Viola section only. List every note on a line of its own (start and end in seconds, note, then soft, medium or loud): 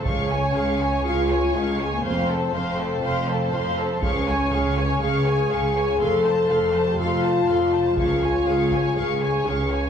0.06 0.29 G#4 soft
0.32 0.56 C#5 soft
0.55 0.80 G#4 soft
0.80 1.05 C#5 soft
1.05 1.28 G#4 soft
1.29 1.54 C#5 soft
1.54 1.79 G#4 soft
1.79 2.04 C#5 soft
2.04 2.27 C5 soft
2.28 2.53 A4 soft
2.53 2.78 C5 soft
2.78 3.03 A4 soft
3.03 3.26 C5 soft
3.28 3.53 A4 soft
3.53 3.77 C5 soft
3.77 4.02 A4 soft
4.02 4.25 G#4 soft
4.27 4.51 C#5 soft
4.53 4.77 G#4 soft
4.77 5.01 C#5 soft
5.02 5.24 G#4 soft
5.26 5.50 C#5 soft
5.50 5.75 G#4 soft
5.75 6.00 C#5 soft
5.99 6.22 A4 soft
6.24 6.49 C5 soft
6.49 6.74 A4 soft
6.74 6.98 C5 soft
6.99 7.22 A4 soft
7.24 7.48 C5 soft
7.49 7.73 A4 soft
7.73 7.97 C5 soft
7.98 8.21 G#4 soft
8.23 8.47 C#5 soft
8.48 8.72 G#4 soft
8.73 8.97 C#5 soft
8.97 9.19 G#4 soft
9.22 9.46 C#5 soft
9.47 9.71 G#4 soft
9.71 9.90 C#5 soft